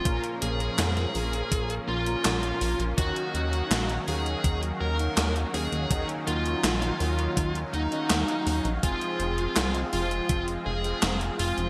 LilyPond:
<<
  \new Staff \with { instrumentName = "Lead electric guitar" } { \time 4/4 \key ees \dorian \tempo 4 = 82 f'8 aes'2 f'4. | ges'4. aes'8 r8 bes'8 r8 aes'8 | r8 f'2 ees'4. | f'4. f'8 r8 aes'8 r8 f'8 | }
  \new Staff \with { instrumentName = "Analog polysynth" } { \time 4/4 \key ees \dorian <bes, des' f' bes'>4. <bes, des' f' bes'>4~ <bes, des' f' bes'>16 <bes, des' f' bes'>4~ <bes, des' f' bes'>16 | <ees des' ees' ges'>4. <ees des' ees' ges'>4~ <ees des' ees' ges'>16 <ees des' ees' ges'>4~ <ees des' ees' ges'>16 | <ees ges des' ees'>4. <ees ges des' ees'>4~ <ees ges des' ees'>16 <ees des' ees' ges'>4~ <ees des' ees' ges'>16 | <f c' f' aes'>4. <f c' f' aes'>4~ <f c' f' aes'>16 <f c' f' aes'>4~ <f c' f' aes'>16 | }
  \new Staff \with { instrumentName = "Supersaw synth" } { \clef bass \time 4/4 \key ees \dorian << { bes1~ | bes1~ | bes1 | c'1 | } \\ { <f des'>1 | <ees ges>1~ | <ees ges>1 | aes1 | } >> }
  \new Staff \with { instrumentName = "Analog synth bass" } { \clef bass \time 4/4 \key ees \dorian bes,,16 r16 bes,,8 f,8 bes,,8 bes,,8 bes,,8 bes,,8 bes,,16 bes,,16 | ees,16 r16 ees,8 bes,,8 ees,8 ees,8 ees,8 ees,8 ees,16 ees,16 | ees,16 r16 ees,8 bes,,8 ees,8 ees,8 ees,16 r16 ees,16 r16 ees,16 bes,,16 | f,,16 r16 f,,8 c,8 f,,8 f,,8 f,,8 f,,8 f,,16 f,,16 | }
  \new DrumStaff \with { instrumentName = "Drums" } \drummode { \time 4/4 <hh bd>16 hh16 hh16 hh16 <hc hh sn>16 <hh sn>16 hho16 hh16 <hh bd>16 hh8 hh16 <hc hh sn>16 hh16 hho16 hh16 | <hh bd>16 hh16 hh16 hh16 <hc hh sn>16 hh16 hho16 hh16 <hh bd>16 hh8 hh16 <hc hh sn>16 hh16 hho16 hh16 | <hh bd>16 hh16 hh16 hh16 <hc hh sn>16 <hh sn>16 hho16 hh16 <hh bd>16 hh16 hh16 hh16 <hc hh sn>16 hh16 hho16 hh16 | <hh bd>16 hh16 hh16 hh16 <hc hh sn>16 hh16 hho16 hh16 <hh bd>16 hh8 hh16 <hc hh sn>16 hh16 hho16 hh16 | }
>>